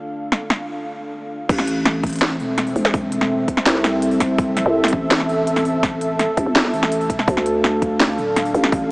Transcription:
Already playing: analog synth pad D4 A4 F5
0.32 snare
0.50 snare
1.49 808-style bass A1, analog synth pad C4 A4 E5, kick, open hi-hat, crash
1.58 snare
1.67 closed hi-hat
1.85 snare
2.03 kick, closed hi-hat
2.07 closed hi-hat
2.10 closed hi-hat
2.13 closed hi-hat
2.16 closed hi-hat
2.19 snare, closed hi-hat
2.40 808-style bass E1, open hi-hat
2.58 snare, closed hi-hat
2.67 open hi-hat
2.76 808-style bass E1, open hi-hat
2.85 snare
2.94 kick, open hi-hat
3.12 closed hi-hat
3.21 snare
3.48 kick, closed hi-hat
3.57 snare
3.66 808-style bass C2, snare, closed hi-hat
3.75 snare
3.84 snare, open hi-hat
4.02 closed hi-hat
4.11 open hi-hat
4.20 kick, snare, closed hi-hat
4.38 kick, open hi-hat
4.57 snare, closed hi-hat
4.66 808-style bass C2
4.84 snare
4.88 closed hi-hat
4.93 808-style bass A1, kick
5.11 snare, closed hi-hat
5.20 snare
5.29 open hi-hat
5.47 closed hi-hat
5.56 snare, open hi-hat
5.65 open hi-hat
5.83 kick, snare, open hi-hat
6.01 closed hi-hat
6.19 snare, closed hi-hat
6.37 808-style bass A1, kick, closed hi-hat
6.46 808-style bass G1
6.55 808-style bass G1, snare, closed hi-hat
6.65 snare
6.74 808-style bass A1, open hi-hat
6.83 snare
6.92 closed hi-hat
7.01 open hi-hat
7.10 808-style bass E1, kick, closed hi-hat
7.19 snare
7.28 808-style bass D2, analog synth pad D4 F5, kick, open hi-hat
7.37 snare
7.46 closed hi-hat
7.64 snare
7.82 kick, closed hi-hat
8.00 snare, closed hi-hat
8.18 808-style bass D1, open hi-hat
8.36 snare, closed hi-hat
8.45 open hi-hat
8.54 808-style bass A1, open hi-hat
8.64 snare
8.72 kick, open hi-hat

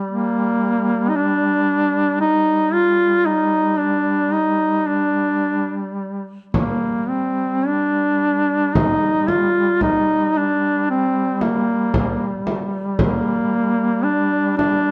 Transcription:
Already playing: duduk G3
0.11 duduk A#3
1.09 duduk D#4
1.16 duduk D4
2.21 duduk D#4
2.73 duduk F4
3.26 duduk D#4
3.79 duduk D4
4.32 duduk D#4
4.87 duduk D4
6.54 duduk G3 A#3, frame drum
7.09 duduk C4
7.66 duduk D4
8.75 duduk D#4, frame drum
9.28 duduk F4, frame drum
9.81 duduk D#4, frame drum
10.37 duduk D4
10.90 duduk C4
11.41 duduk A#3, frame drum
11.94 frame drum
12.47 frame drum
12.98 duduk A#3, frame drum
14.04 duduk D4
14.57 duduk D4, frame drum

